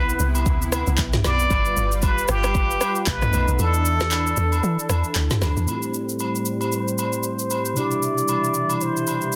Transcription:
0.00 0.16 C2 loud
0.00 1.48 C3 medium
0.00 1.48 B3 medium
0.00 1.48 E4 medium
0.00 0.32 B4 medium
0.09 shaker medium
0.19 0.48 C2 loud
0.19 shaker loud
0.35 high agogo medium
0.35 shaker medium
0.46 0.84 D2 loud
0.46 kick loud
0.46 shaker medium
0.62 shaker medium
0.72 cross-stick loud
0.72 high agogo medium
0.72 shaker loud
0.87 0.97 C2 medium
0.87 shaker soft
0.97 1.22 B1 medium
0.97 kick medium
0.97 clap medium
0.97 shaker medium
1.13 snare medium
1.13 mid tom medium
1.13 shaker medium
1.24 1.48 B1 loud
1.24 2.05 D5 loud
1.24 cross-stick loud
1.24 snare medium
1.24 high agogo medium
1.24 shaker medium
1.39 shaker medium
1.50 1.74 G1 loud
1.50 3.06 G3 medium
1.50 3.05 F4 medium
1.50 3.05 B4 medium
1.50 kick loud
1.50 high agogo medium
1.50 shaker medium
1.65 shaker medium
1.77 2.25 G1 loud
1.77 shaker medium
1.92 shaker medium
2.02 2.31 B4 loud
2.02 kick medium
2.02 high agogo medium
2.02 shaker medium
2.18 shaker medium
2.28 2.77 G1 medium
2.28 3.09 G4 loud
2.28 cross-stick loud
2.28 shaker loud
2.43 cross-stick loud
2.43 high agogo medium
2.43 shaker medium
2.55 kick loud
2.55 shaker medium
2.71 shaker medium
2.81 cross-stick loud
2.81 high agogo medium
2.81 shaker loud
2.95 shaker soft
3.06 3.31 B1 loud
3.06 3.59 A3 medium
3.06 3.59 B3 medium
3.06 3.59 D#4 medium
3.06 3.62 B4 loud
3.06 kick medium
3.06 clap medium
3.06 shaker medium
3.22 cross-stick medium
3.22 mid tom medium
3.22 shaker medium
3.33 3.47 B1 loud
3.33 high agogo medium
3.33 shaker medium
3.48 3.58 B1 loud
3.48 shaker medium
3.59 4.34 E2 loud
3.59 5.66 E3 medium
3.59 5.66 D4 medium
3.59 5.66 A4 medium
3.59 5.16 A4 loud
3.59 high agogo medium
3.59 shaker medium
3.74 shaker medium
3.85 shaker medium
4.00 cross-stick medium
4.00 snare medium
4.00 shaker medium
4.11 clap medium
4.11 high agogo medium
4.11 shaker medium
4.27 shaker medium
4.37 4.61 E2 loud
4.37 shaker medium
4.52 high agogo medium
4.52 shaker soft
4.63 4.77 E3 loud
4.63 shaker medium
4.79 shaker medium
4.89 5.03 E2 medium
4.89 cross-stick loud
4.89 high agogo medium
4.89 shaker loud
5.04 shaker soft
5.15 5.29 D2 medium
5.15 clap medium
5.15 shaker medium
5.30 snare medium
5.30 mid tom medium
5.30 shaker medium
5.42 5.55 D2 loud
5.42 cross-stick loud
5.42 snare medium
5.42 high agogo medium
5.42 shaker loud
5.57 5.67 E2 medium
5.57 shaker medium
5.65 7.71 A2 medium
5.65 7.75 A2 medium
5.65 7.75 G3 medium
5.65 7.72 A3 medium
5.65 7.73 C4 medium
5.65 7.75 C5 medium
5.65 high agogo medium
5.65 shaker medium
5.69 7.73 E4 medium
5.69 5.77 F4 medium
5.77 7.77 G4 medium
5.82 shaker medium
5.94 shaker medium
6.09 shaker soft
6.19 high agogo medium
6.19 shaker medium
6.35 shaker medium
6.46 shaker medium
6.61 high agogo medium
6.61 shaker soft
6.72 7.79 C5 loud
6.72 shaker medium
6.88 shaker soft
6.98 high agogo medium
6.98 shaker loud
7.13 shaker soft
7.23 shaker medium
7.39 shaker medium
7.50 high agogo medium
7.50 shaker medium
7.65 shaker medium
7.74 9.36 B2 medium
7.74 9.36 C3 medium
7.74 9.36 E3 medium
7.74 9.36 G3 medium
7.74 9.36 D4 medium
7.74 9.36 E4 medium
7.74 8.83 D5 loud
7.74 high agogo medium
7.74 shaker medium
7.79 9.36 G4 medium
7.91 shaker medium
8.03 shaker medium
8.18 shaker soft
8.28 high agogo medium
8.28 shaker medium
8.44 shaker medium
8.54 shaker medium
8.69 high agogo medium
8.69 shaker soft
8.81 9.36 C5 medium
8.81 shaker medium
8.97 shaker soft
9.07 high agogo medium
9.07 shaker loud
9.21 shaker soft
9.32 shaker medium

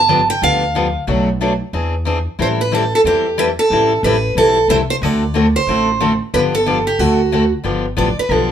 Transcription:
0.00 0.29 G1 medium
0.00 0.29 A5 medium
0.09 0.20 D3 medium
0.09 0.20 F3 medium
0.09 0.20 B3 medium
0.09 0.20 D4 medium
0.09 0.20 G4 medium
0.30 0.43 G5 medium
0.42 0.95 D2 medium
0.42 0.62 D3 medium
0.42 0.63 F3 medium
0.42 0.63 B3 medium
0.42 0.63 D4 medium
0.42 0.63 G4 medium
0.42 1.04 F5 medium
0.75 0.86 D3 medium
0.75 0.86 F3 medium
0.75 0.86 B3 medium
0.75 0.86 D4 medium
0.75 0.86 G4 medium
1.07 1.60 B1 medium
1.07 1.28 B2 medium
1.07 1.28 F#3 medium
1.07 1.28 A3 medium
1.07 1.28 D4 medium
1.07 1.28 F#4 medium
1.41 1.52 B2 medium
1.41 1.52 F#3 medium
1.41 1.52 A3 medium
1.41 1.52 D4 medium
1.41 1.52 F#4 medium
1.73 2.26 E2 medium
1.73 1.94 E3 medium
1.73 1.94 C4 medium
1.73 1.94 D4 medium
1.73 1.94 G#4 medium
2.05 2.17 E3 medium
2.05 2.17 C4 medium
2.05 2.17 D4 medium
2.05 2.18 G#4 medium
2.39 2.91 A1 medium
2.39 2.59 E3 medium
2.39 2.60 G3 medium
2.39 2.60 C4 medium
2.39 2.60 E4 medium
2.39 2.60 A4 medium
2.39 2.47 C5 medium
2.61 2.72 B4 medium
2.72 2.83 E3 medium
2.72 2.83 G3 medium
2.72 2.83 C4 medium
2.72 2.83 E4 medium
2.72 2.83 A4 medium
2.72 2.94 A4 medium
2.95 3.00 A4 medium
3.04 3.57 E2 medium
3.04 3.25 E3 medium
3.04 3.25 G3 medium
3.04 3.26 C4 medium
3.04 3.26 E4 medium
3.04 3.40 G4 medium
3.04 3.26 A4 medium
3.38 3.49 E3 medium
3.38 3.49 G3 medium
3.38 3.49 C4 medium
3.38 3.49 E4 medium
3.38 3.49 A4 medium
3.38 3.44 B4 medium
3.59 4.01 A4 medium
3.70 3.97 A1 medium
3.70 3.91 E3 medium
3.70 3.92 G3 medium
3.70 3.92 C4 medium
3.70 3.92 E4 medium
3.70 3.92 A4 medium
4.03 4.31 A1 medium
4.03 4.15 E3 medium
4.03 4.15 G3 medium
4.03 4.15 C4 medium
4.03 4.16 E4 medium
4.03 4.16 A4 medium
4.03 4.34 B4 medium
4.35 4.64 B1 medium
4.35 4.57 E3 medium
4.35 4.57 G3 medium
4.35 4.57 C4 medium
4.35 4.57 E4 medium
4.35 4.57 A4 medium
4.35 4.70 A4 medium
4.68 4.96 C2 medium
4.68 4.80 E3 medium
4.68 4.80 G3 medium
4.68 4.80 C4 medium
4.68 4.80 E4 medium
4.68 4.81 A4 medium
4.68 4.75 C5 medium
4.90 4.95 C5 medium
5.02 5.54 D2 medium
5.02 5.23 D3 medium
5.02 5.23 A3 medium
5.02 5.23 C4 medium
5.02 5.23 F#4 medium
5.02 5.23 A4 medium
5.02 5.55 D5 medium
5.34 5.45 D3 medium
5.34 5.46 A3 medium
5.34 5.46 C4 medium
5.34 5.46 F#4 medium
5.34 5.46 A4 medium
5.56 6.17 C5 medium
5.67 6.19 A1 medium
5.67 5.88 D3 medium
5.67 5.88 A3 medium
5.67 5.88 C4 medium
5.67 5.89 F#4 medium
5.67 5.89 A4 medium
6.00 6.11 D3 medium
6.00 6.11 A3 medium
6.00 6.11 C4 medium
6.00 6.11 F#4 medium
6.00 6.12 A4 medium
6.34 6.86 G1 medium
6.34 6.54 D3 medium
6.34 6.54 F3 medium
6.34 6.54 B3 medium
6.34 6.54 D4 medium
6.34 6.54 G4 medium
6.34 6.39 B4 medium
6.55 6.87 A4 medium
6.66 6.77 D3 medium
6.66 6.77 F3 medium
6.66 6.77 B3 medium
6.66 6.77 D4 medium
6.66 6.78 G4 medium
6.87 6.99 G4 medium
6.99 7.51 D2 medium
6.99 7.20 D3 medium
6.99 7.20 A3 medium
6.99 7.20 C4 medium
6.99 7.52 F#4 medium
6.99 7.20 F#4 medium
6.99 7.20 A4 medium
7.32 7.43 D3 medium
7.32 7.43 A3 medium
7.32 7.43 C4 medium
7.32 7.43 F#4 medium
7.32 7.44 A4 medium
7.64 7.96 G1 medium
7.64 7.84 D3 medium
7.64 7.85 F3 medium
7.64 7.85 B3 medium
7.64 7.85 D4 medium
7.64 7.85 G4 medium
7.97 8.16 A1 medium
7.97 8.08 D3 medium
7.97 8.08 F3 medium
7.97 8.08 B3 medium
7.97 8.08 D4 medium
7.97 8.08 G4 medium
7.97 8.17 D5 medium
8.17 8.32 B4 medium
8.17 muted upright bass stroke soft
8.29 8.52 B1 medium
8.29 8.51 D3 medium
8.29 8.51 F3 medium
8.29 8.51 B3 medium
8.29 8.51 D4 medium
8.29 8.51 G4 medium
8.29 8.50 A4 medium

